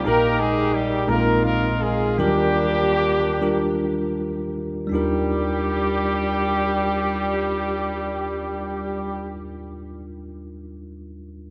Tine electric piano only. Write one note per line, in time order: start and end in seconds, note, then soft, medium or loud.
0.05 1.05 A#1 soft
0.05 1.05 A#2 medium
0.05 0.85 D#4 medium
0.05 0.13 F#4 soft
0.05 0.86 A#4 medium
0.13 0.89 G5 medium
1.07 2.15 A#1 soft
1.07 2.15 A#2 medium
1.07 1.92 G#3 medium
1.07 1.93 C4 soft
1.07 1.93 D#4 soft
1.07 1.93 F4 soft
1.07 1.16 A4 soft
1.16 1.97 A#4 medium
2.18 4.88 D#2 soft
2.18 4.88 D#3 medium
2.18 2.26 F#3 soft
2.18 3.13 D4 medium
2.18 3.14 F4 medium
2.18 3.13 G4 medium
2.18 3.14 A#4 medium
2.24 3.16 G3 medium
3.41 4.55 G3 medium
3.41 4.55 D4 medium
3.41 4.55 F4 medium
3.41 4.55 G4 medium
3.41 4.55 A#4 medium
4.87 9.37 D#2 medium
4.87 9.33 G3 medium
4.87 9.35 D4 medium
4.92 9.38 D#4 medium
4.92 9.40 F4 medium
4.92 9.41 A#4 medium